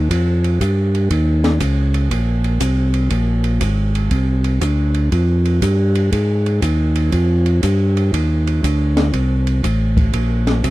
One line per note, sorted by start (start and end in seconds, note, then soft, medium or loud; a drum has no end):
0.10 0.59 F2 medium
0.10 kick soft
0.10 ride medium
0.44 ride soft
0.60 1.09 G2 medium
0.60 kick soft
0.60 hi-hat pedal medium
0.60 ride medium
0.95 ride soft
1.10 1.59 D#2 medium
1.10 kick soft
1.10 ride medium
1.44 snare medium
1.44 ride soft
1.60 2.09 C#2 medium
1.60 kick soft
1.60 hi-hat pedal soft
1.60 ride medium
1.94 ride soft
2.10 2.59 A#1 medium
2.10 kick soft
2.10 ride medium
2.44 ride soft
2.60 3.09 C2 medium
2.60 kick soft
2.60 hi-hat pedal medium
2.60 ride medium
2.94 ride soft
3.10 3.60 A#1 medium
3.10 kick soft
3.10 ride medium
3.44 ride soft
3.61 4.10 G#1 medium
3.61 kick soft
3.61 hi-hat pedal medium
3.61 ride medium
3.95 ride soft
4.11 4.60 C2 medium
4.11 kick soft
4.11 ride medium
4.44 ride soft
4.61 5.10 D2 medium
4.61 kick soft
4.61 hi-hat pedal medium
4.61 ride medium
4.94 ride soft
5.12 5.61 F2 medium
5.12 kick soft
5.12 ride medium
5.45 ride soft
5.62 6.11 G2 medium
5.62 kick soft
5.62 hi-hat pedal medium
5.62 ride medium
5.95 ride soft
6.12 6.61 G#2 medium
6.12 kick soft
6.12 ride medium
6.46 ride soft
6.62 7.11 D#2 medium
6.62 kick soft
6.62 hi-hat pedal medium
6.62 ride medium
6.95 ride soft
7.12 7.61 F2 medium
7.12 kick soft
7.12 ride medium
7.46 ride soft
7.63 8.11 G2 medium
7.63 kick soft
7.63 hi-hat pedal medium
7.63 ride medium
7.97 ride soft
8.13 8.61 D#2 medium
8.13 kick soft
8.13 ride medium
8.47 ride soft
8.63 9.12 D2 medium
8.63 kick soft
8.63 hi-hat pedal medium
8.63 ride medium
8.97 snare medium
8.97 ride soft
9.13 9.62 C2 medium
9.13 kick soft
9.13 ride medium
9.47 ride soft
9.63 10.12 A1 medium
9.63 kick soft
9.63 hi-hat pedal medium
9.63 ride medium
9.97 kick medium
9.97 ride soft
10.13 10.62 A#1 medium
10.13 kick soft
10.13 ride medium
10.47 snare soft
10.47 ride soft
10.63 10.70 C2 medium
10.63 kick soft
10.63 hi-hat pedal medium
10.63 ride medium